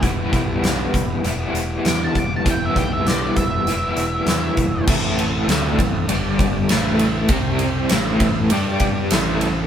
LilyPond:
<<
  \new Staff \with { instrumentName = "Lead electric guitar" } { \time 4/4 \key a \minor \tempo 4 = 99 r2. d'''16 a''16 d'''16 a''16 | g''16 e''16 g''16 e''16 d''8 e''2~ e''8 | r1 | r1 | }
  \new Staff \with { instrumentName = "Tonewheel organ" } { \time 4/4 \key a \minor <b e' g'>8 <b e' g'>4. r2 | <b e' a'>8 <b e' a'>4. r2 | <c' e' a'>8 <c' e' a'>4. <d' g' d''>4 <e' a' c''>4 | <c' g' c''>8 <c' g' c''>8 <e' a' c''>4 <d' g' d''>4 <e' a' c''>4 | }
  \new Staff \with { instrumentName = "Overdriven electric guitar" } { \clef bass \time 4/4 \key a \minor <e g b e'>2 <e g b e'>2 | <e g b e'>2 <e g b e'>2 | <a, e a>4 <d a d'>8 <a, e>8 <g, d g>4 <a, e a>4 | <c g c'>4 <a, e a>4 <g d' g'>4 <a, e a>4 | }
  \new Staff \with { instrumentName = "Picked electric bass" } { \clef bass \time 4/4 \key a \minor e,,8 b,,8 b,,8 e,,8 e,,8 e,,8 e,8 e,,8 | e,,8 b,,8 b,,8 e,,8 e,,8 e,,8 e,8 e,,8 | a,,4 d,8 a,,8 g,,4 a,,4 | c,4 a,,4 g,4 a,,4 | }
  \new DrumStaff \with { instrumentName = "Drums" } \drummode { \time 4/4 <hh bd>8 <hh bd>8 <hh sn>8 <hh bd>8 hh8 hh8 <hh sn>8 <hh bd>8 | <hh bd>8 <hh bd>8 <hh sn>8 <hh bd>8 hh8 hh8 <hh sn>8 <hh bd>8 | <cymc bd>8 cymr8 <cymr sn>8 <bd cymr>8 cymr8 <bd cymr>8 <cymr sn>8 cymr8 | <bd cymr>8 cymr8 <cymr sn>8 <bd cymr>8 cymr8 <bd cymr>8 <cymr sn>8 cymr8 | }
>>